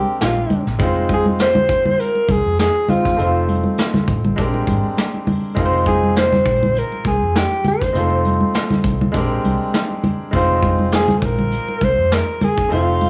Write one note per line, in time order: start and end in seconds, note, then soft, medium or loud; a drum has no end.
0.00 0.76 G#3 medium
0.00 0.77 C4 medium
0.00 0.77 D4 medium
0.00 0.19 G4 medium
0.00 0.78 G4 soft
0.00 0.79 A#4 medium
0.21 0.44 A#1 medium
0.21 0.65 F4 medium
0.21 snare loud
0.21 closed hi-hat medium
0.37 muted conga soft
0.50 closed hi-hat medium
0.50 high conga medium
0.50 low conga medium
0.67 0.80 A#1 medium
0.67 snare soft
0.79 1.81 F1 medium
0.79 2.84 G#3 medium
0.79 2.84 C4 medium
0.79 2.85 D#4 medium
0.79 2.85 F4 medium
0.79 kick loud
0.79 closed hi-hat medium
0.79 muted conga soft
0.83 2.86 C5 medium
0.96 muted conga soft
1.09 1.26 G#4 medium
1.09 kick medium
1.09 closed hi-hat medium
1.09 high conga medium
1.26 high conga medium
1.39 2.01 C5 loud
1.39 snare medium
1.39 closed hi-hat medium
1.55 muted conga soft
1.55 high conga medium
1.55 low conga medium
1.69 kick medium
1.69 closed hi-hat medium
1.85 high conga medium
1.85 low conga medium
2.00 2.32 A#4 medium
2.00 closed hi-hat medium
2.15 muted conga soft
2.29 2.41 C2 medium
2.29 2.59 G#4 medium
2.29 kick medium
2.29 closed hi-hat medium
2.29 high conga medium
2.46 2.69 F2 medium
2.59 2.91 G#4 medium
2.59 snare loud
2.59 closed hi-hat medium
2.88 3.18 G#3 soft
2.88 3.16 C4 soft
2.88 3.17 D#4 soft
2.88 3.48 F4 medium
2.88 3.18 F4 soft
2.88 3.19 C5 soft
2.88 closed hi-hat medium
2.88 high conga medium
2.88 low conga medium
3.05 kick medium
3.05 snare soft
3.17 3.65 F1 medium
3.17 4.34 A3 medium
3.17 4.35 C4 medium
3.17 4.35 D#4 soft
3.17 4.36 F4 medium
3.17 closed hi-hat medium
3.21 4.37 C5 medium
3.48 closed hi-hat medium
3.48 high conga medium
3.64 high conga medium
3.78 snare medium
3.78 closed hi-hat medium
3.78 muted conga soft
3.94 snare soft
3.94 muted conga soft
3.94 high conga medium
3.94 low conga medium
4.08 4.31 A1 medium
4.08 kick medium
4.08 closed hi-hat medium
4.25 high conga medium
4.25 low conga medium
4.36 4.61 A#1 medium
4.36 5.53 G#3 medium
4.36 5.54 C4 medium
4.36 5.55 D4 medium
4.36 5.55 G4 medium
4.36 kick medium
4.36 closed hi-hat medium
4.36 muted conga soft
4.41 5.56 A#4 medium
4.54 muted conga soft
4.67 4.80 G#1 medium
4.67 kick medium
4.67 closed hi-hat medium
4.67 high conga medium
4.97 snare loud
4.97 closed hi-hat medium
4.97 muted conga soft
5.14 muted conga soft
5.27 open hi-hat soft
5.27 high conga medium
5.27 low conga medium
5.55 6.42 F1 medium
5.55 7.90 G#3 medium
5.55 7.91 C4 medium
5.55 7.91 D#4 medium
5.55 7.92 F4 medium
5.55 kick loud
5.55 closed hi-hat medium
5.55 muted conga soft
5.59 5.65 A#4 medium
5.66 7.95 C5 medium
5.73 muted conga soft
5.86 6.15 G#4 medium
5.86 kick medium
5.86 closed hi-hat medium
5.86 high conga soft
6.03 high conga medium
6.16 6.80 C5 loud
6.16 snare medium
6.16 closed hi-hat medium
6.16 muted conga soft
6.32 snare soft
6.32 high conga medium
6.32 low conga medium
6.46 6.82 A#1 medium
6.46 kick medium
6.46 open hi-hat soft
6.63 high conga medium
6.63 low conga medium
6.76 7.06 A#4 medium
6.76 closed hi-hat medium
6.76 muted conga soft
6.92 muted conga soft
7.05 7.18 C2 medium
7.05 7.34 G#4 medium
7.05 kick medium
7.05 closed hi-hat medium
7.05 high conga medium
7.22 7.45 F2 medium
7.35 7.64 G4 medium
7.35 snare loud
7.35 closed hi-hat medium
7.35 muted conga soft
7.51 muted conga soft
7.64 8.22 C5 medium
7.64 closed hi-hat medium
7.64 high conga medium
7.64 low conga medium
7.81 kick medium
7.81 snare soft
7.92 8.41 F1 loud
7.92 8.01 G#3 soft
7.92 9.11 C4 medium
7.92 9.11 D#4 medium
7.92 9.12 F4 medium
7.92 closed hi-hat medium
7.97 9.14 A3 medium
7.97 9.13 C5 medium
8.10 muted conga soft
8.25 closed hi-hat medium
8.25 high conga medium
8.40 high conga medium
8.54 snare medium
8.54 closed hi-hat medium
8.70 snare soft
8.70 muted conga soft
8.70 high conga medium
8.70 low conga medium
8.84 9.07 C2 medium
8.84 kick medium
8.84 closed hi-hat medium
9.01 high conga medium
9.01 low conga medium
9.12 9.38 A#1 medium
9.12 10.30 G#3 medium
9.12 10.30 C4 medium
9.12 10.31 D4 medium
9.12 10.31 G4 medium
9.12 kick medium
9.12 closed hi-hat medium
9.12 muted conga soft
9.17 10.32 A#4 medium
9.44 9.57 C2 medium
9.44 closed hi-hat medium
9.44 high conga medium
9.74 snare loud
9.74 closed hi-hat medium
9.74 muted conga soft
9.91 muted conga soft
10.04 closed hi-hat medium
10.04 high conga medium
10.04 low conga medium
10.31 11.19 F1 medium
10.31 12.66 G#3 medium
10.31 12.67 C4 medium
10.31 12.67 D#4 medium
10.31 12.68 F4 medium
10.31 kick loud
10.31 closed hi-hat medium
10.31 muted conga soft
10.36 12.69 C5 medium
10.63 kick medium
10.63 closed hi-hat medium
10.63 high conga soft
10.79 high conga medium
10.92 11.19 G#4 medium
10.92 snare medium
10.92 closed hi-hat medium
11.08 snare soft
11.08 muted conga soft
11.08 high conga medium
11.08 low conga medium
11.18 11.27 A4 medium
11.22 11.58 A#1 medium
11.22 11.85 A#4 loud
11.22 kick loud
11.22 closed hi-hat medium
11.39 high conga medium
11.39 low conga medium
11.52 closed hi-hat medium
11.52 muted conga soft
11.69 muted conga soft
11.81 11.94 C2 medium
11.81 12.15 C5 loud
11.81 kick medium
11.81 closed hi-hat medium
11.81 high conga medium
11.99 12.21 F2 medium
12.12 12.46 A#4 medium
12.12 snare loud
12.12 closed hi-hat medium
12.12 muted conga soft
12.41 12.73 G#4 medium
12.41 closed hi-hat medium
12.41 high conga medium
12.41 low conga medium
12.58 kick medium
12.69 13.10 F1 medium
12.69 13.10 A3 medium
12.69 13.10 C4 medium
12.69 13.10 D#4 medium
12.69 13.10 F4 medium
12.69 closed hi-hat medium
12.69 muted conga soft
12.73 13.10 F4 medium
12.73 13.10 C5 medium
12.87 muted conga soft
13.01 closed hi-hat medium
13.01 high conga medium